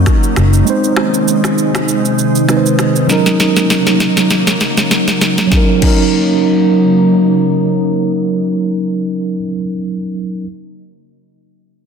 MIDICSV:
0, 0, Header, 1, 5, 480
1, 0, Start_track
1, 0, Tempo, 606061
1, 531, Time_signature, 4, 2, 24, 8
1, 9394, End_track
2, 0, Start_track
2, 0, Title_t, "Tine electric piano"
2, 0, Program_c, 0, 4
2, 0, Control_c, 0, 64, 127
2, 0, Note_on_c, 0, 54, 77
2, 0, Note_on_c, 0, 61, 70
2, 0, Note_on_c, 0, 63, 68
2, 0, Note_on_c, 0, 70, 83
2, 250, Note_off_c, 0, 54, 0
2, 257, Note_off_c, 0, 61, 0
2, 264, Note_off_c, 0, 63, 0
2, 270, Note_off_c, 0, 70, 0
2, 514, Note_on_c, 0, 56, 76
2, 527, Note_on_c, 0, 60, 71
2, 541, Note_on_c, 0, 63, 73
2, 542, Control_c, 0, 64, 0
2, 553, Note_on_c, 0, 72, 88
2, 678, Control_c, 0, 64, 127
2, 1934, Note_off_c, 0, 56, 0
2, 1940, Note_off_c, 0, 60, 0
2, 1947, Note_off_c, 0, 63, 0
2, 1954, Note_off_c, 0, 72, 0
2, 1962, Note_on_c, 0, 56, 58
2, 1968, Note_on_c, 0, 60, 52
2, 1974, Note_on_c, 0, 63, 54
2, 1980, Note_on_c, 0, 71, 52
2, 2032, Note_on_c, 0, 72, 65
2, 2033, Note_off_c, 0, 71, 0
2, 2434, Note_on_c, 0, 54, 78
2, 2445, Note_on_c, 0, 61, 70
2, 2447, Note_off_c, 0, 56, 0
2, 2450, Note_off_c, 0, 60, 0
2, 2450, Note_off_c, 0, 63, 0
2, 2459, Note_on_c, 0, 63, 74
2, 2462, Control_c, 0, 64, 0
2, 2472, Note_on_c, 0, 70, 82
2, 2482, Note_off_c, 0, 72, 0
2, 2599, Control_c, 0, 64, 127
2, 4322, Note_off_c, 0, 54, 0
2, 4332, Note_on_c, 0, 54, 77
2, 4337, Note_off_c, 0, 61, 0
2, 4344, Note_off_c, 0, 63, 0
2, 4350, Note_off_c, 0, 70, 0
2, 4359, Note_on_c, 0, 61, 75
2, 4383, Control_c, 0, 64, 0
2, 4385, Note_on_c, 0, 63, 74
2, 4412, Note_on_c, 0, 70, 88
2, 4493, Note_off_c, 0, 54, 0
2, 4496, Control_c, 0, 64, 127
2, 4508, Note_off_c, 0, 61, 0
2, 4522, Note_off_c, 0, 63, 0
2, 4536, Note_off_c, 0, 70, 0
2, 4572, Note_on_c, 0, 54, 80
2, 4598, Note_on_c, 0, 61, 69
2, 4625, Note_on_c, 0, 63, 75
2, 4652, Note_on_c, 0, 70, 86
2, 7428, Note_off_c, 0, 54, 0
2, 7441, Note_off_c, 0, 61, 0
2, 7454, Note_off_c, 0, 63, 0
2, 7468, Note_off_c, 0, 70, 0
2, 8282, Control_c, 0, 64, 0
2, 9394, End_track
3, 0, Start_track
3, 0, Title_t, "Ambient pad"
3, 0, Program_c, 1, 92
3, 0, Note_on_c, 1, 54, 79
3, 0, Note_on_c, 1, 58, 75
3, 0, Note_on_c, 1, 61, 84
3, 0, Note_on_c, 1, 63, 88
3, 499, Note_off_c, 1, 61, 0
3, 509, Note_off_c, 1, 54, 0
3, 509, Note_off_c, 1, 58, 0
3, 510, Note_off_c, 1, 63, 0
3, 533, Note_on_c, 1, 48, 80
3, 533, Note_on_c, 1, 51, 74
3, 533, Note_on_c, 1, 63, 92
3, 534, Note_on_c, 1, 56, 77
3, 2433, Note_off_c, 1, 48, 0
3, 2433, Note_off_c, 1, 51, 0
3, 2433, Note_off_c, 1, 56, 0
3, 2450, Note_on_c, 1, 49, 80
3, 2450, Note_on_c, 1, 58, 75
3, 2451, Note_on_c, 1, 54, 76
3, 4341, Note_off_c, 1, 63, 0
3, 4351, Note_off_c, 1, 49, 0
3, 4352, Note_off_c, 1, 54, 0
3, 4352, Note_off_c, 1, 58, 0
3, 4371, Note_on_c, 1, 58, 75
3, 4372, Note_on_c, 1, 49, 77
3, 4372, Note_on_c, 1, 54, 76
3, 4373, Note_on_c, 1, 63, 89
3, 6893, Note_off_c, 1, 58, 0
3, 6894, Note_off_c, 1, 49, 0
3, 6894, Note_off_c, 1, 54, 0
3, 6894, Note_off_c, 1, 63, 0
3, 9394, End_track
4, 0, Start_track
4, 0, Title_t, "Fingered electric bass"
4, 0, Program_c, 2, 33
4, 294, Note_on_c, 2, 30, 90
4, 480, Note_off_c, 2, 30, 0
4, 9394, End_track
5, 0, Start_track
5, 0, Title_t, "Drums"
5, 49, Note_on_c, 9, 26, 72
5, 52, Note_on_c, 9, 82, 53
5, 53, Note_on_c, 9, 37, 89
5, 54, Note_on_c, 9, 36, 82
5, 128, Note_off_c, 9, 26, 0
5, 131, Note_off_c, 9, 82, 0
5, 132, Note_off_c, 9, 37, 0
5, 133, Note_off_c, 9, 36, 0
5, 186, Note_on_c, 9, 82, 52
5, 265, Note_off_c, 9, 82, 0
5, 288, Note_on_c, 9, 26, 74
5, 291, Note_on_c, 9, 82, 57
5, 292, Note_on_c, 9, 37, 92
5, 367, Note_off_c, 9, 26, 0
5, 370, Note_off_c, 9, 82, 0
5, 371, Note_off_c, 9, 37, 0
5, 423, Note_on_c, 9, 82, 53
5, 502, Note_off_c, 9, 82, 0
5, 531, Note_on_c, 9, 82, 77
5, 610, Note_off_c, 9, 82, 0
5, 664, Note_on_c, 9, 82, 48
5, 743, Note_off_c, 9, 82, 0
5, 764, Note_on_c, 9, 26, 78
5, 768, Note_on_c, 9, 37, 97
5, 843, Note_off_c, 9, 26, 0
5, 847, Note_off_c, 9, 37, 0
5, 903, Note_on_c, 9, 82, 51
5, 982, Note_off_c, 9, 82, 0
5, 1013, Note_on_c, 9, 82, 72
5, 1092, Note_off_c, 9, 82, 0
5, 1140, Note_on_c, 9, 26, 71
5, 1143, Note_on_c, 9, 37, 89
5, 1144, Note_on_c, 9, 82, 57
5, 1219, Note_off_c, 9, 26, 0
5, 1222, Note_off_c, 9, 37, 0
5, 1224, Note_off_c, 9, 82, 0
5, 1251, Note_on_c, 9, 82, 50
5, 1330, Note_off_c, 9, 82, 0
5, 1383, Note_on_c, 9, 26, 72
5, 1387, Note_on_c, 9, 37, 97
5, 1387, Note_on_c, 9, 82, 57
5, 1463, Note_off_c, 9, 26, 0
5, 1466, Note_off_c, 9, 37, 0
5, 1466, Note_off_c, 9, 82, 0
5, 1492, Note_on_c, 9, 82, 63
5, 1571, Note_off_c, 9, 82, 0
5, 1625, Note_on_c, 9, 82, 53
5, 1705, Note_off_c, 9, 82, 0
5, 1731, Note_on_c, 9, 82, 55
5, 1810, Note_off_c, 9, 82, 0
5, 1864, Note_on_c, 9, 82, 59
5, 1943, Note_off_c, 9, 82, 0
5, 1969, Note_on_c, 9, 26, 68
5, 1971, Note_on_c, 9, 82, 54
5, 1972, Note_on_c, 9, 37, 81
5, 2048, Note_off_c, 9, 26, 0
5, 2051, Note_off_c, 9, 37, 0
5, 2051, Note_off_c, 9, 82, 0
5, 2107, Note_on_c, 9, 82, 49
5, 2186, Note_off_c, 9, 82, 0
5, 2208, Note_on_c, 9, 26, 73
5, 2210, Note_on_c, 9, 82, 54
5, 2211, Note_on_c, 9, 37, 91
5, 2287, Note_off_c, 9, 26, 0
5, 2289, Note_off_c, 9, 82, 0
5, 2290, Note_off_c, 9, 37, 0
5, 2342, Note_on_c, 9, 82, 52
5, 2422, Note_off_c, 9, 82, 0
5, 2451, Note_on_c, 9, 82, 77
5, 2452, Note_on_c, 9, 38, 55
5, 2531, Note_off_c, 9, 38, 0
5, 2531, Note_off_c, 9, 82, 0
5, 2584, Note_on_c, 9, 38, 47
5, 2585, Note_on_c, 9, 82, 46
5, 2663, Note_off_c, 9, 38, 0
5, 2664, Note_off_c, 9, 82, 0
5, 2692, Note_on_c, 9, 38, 62
5, 2692, Note_on_c, 9, 82, 53
5, 2771, Note_off_c, 9, 38, 0
5, 2771, Note_off_c, 9, 82, 0
5, 2824, Note_on_c, 9, 38, 52
5, 2824, Note_on_c, 9, 82, 50
5, 2903, Note_off_c, 9, 38, 0
5, 2903, Note_off_c, 9, 82, 0
5, 2932, Note_on_c, 9, 38, 68
5, 2933, Note_on_c, 9, 82, 69
5, 3011, Note_off_c, 9, 38, 0
5, 3012, Note_off_c, 9, 82, 0
5, 3063, Note_on_c, 9, 38, 59
5, 3063, Note_on_c, 9, 82, 56
5, 3142, Note_off_c, 9, 38, 0
5, 3142, Note_off_c, 9, 82, 0
5, 3170, Note_on_c, 9, 82, 48
5, 3171, Note_on_c, 9, 38, 68
5, 3249, Note_off_c, 9, 82, 0
5, 3250, Note_off_c, 9, 38, 0
5, 3302, Note_on_c, 9, 38, 65
5, 3304, Note_on_c, 9, 82, 55
5, 3381, Note_off_c, 9, 38, 0
5, 3383, Note_off_c, 9, 82, 0
5, 3409, Note_on_c, 9, 82, 64
5, 3410, Note_on_c, 9, 38, 73
5, 3488, Note_off_c, 9, 82, 0
5, 3489, Note_off_c, 9, 38, 0
5, 3542, Note_on_c, 9, 38, 71
5, 3542, Note_on_c, 9, 82, 54
5, 3621, Note_off_c, 9, 38, 0
5, 3621, Note_off_c, 9, 82, 0
5, 3648, Note_on_c, 9, 82, 53
5, 3650, Note_on_c, 9, 38, 83
5, 3728, Note_off_c, 9, 82, 0
5, 3729, Note_off_c, 9, 38, 0
5, 3781, Note_on_c, 9, 82, 58
5, 3782, Note_on_c, 9, 38, 74
5, 3860, Note_off_c, 9, 82, 0
5, 3861, Note_off_c, 9, 38, 0
5, 3890, Note_on_c, 9, 38, 86
5, 3890, Note_on_c, 9, 82, 53
5, 3969, Note_off_c, 9, 38, 0
5, 3969, Note_off_c, 9, 82, 0
5, 4021, Note_on_c, 9, 38, 73
5, 4023, Note_on_c, 9, 82, 47
5, 4100, Note_off_c, 9, 38, 0
5, 4102, Note_off_c, 9, 82, 0
5, 4129, Note_on_c, 9, 82, 57
5, 4130, Note_on_c, 9, 38, 91
5, 4208, Note_off_c, 9, 82, 0
5, 4209, Note_off_c, 9, 38, 0
5, 4260, Note_on_c, 9, 82, 53
5, 4262, Note_on_c, 9, 38, 81
5, 4340, Note_off_c, 9, 82, 0
5, 4341, Note_off_c, 9, 38, 0
5, 4369, Note_on_c, 9, 38, 83
5, 4371, Note_on_c, 9, 36, 96
5, 4448, Note_off_c, 9, 38, 0
5, 4450, Note_off_c, 9, 36, 0
5, 4610, Note_on_c, 9, 49, 83
5, 4611, Note_on_c, 9, 36, 97
5, 4689, Note_off_c, 9, 49, 0
5, 4690, Note_off_c, 9, 36, 0
5, 9394, End_track
0, 0, End_of_file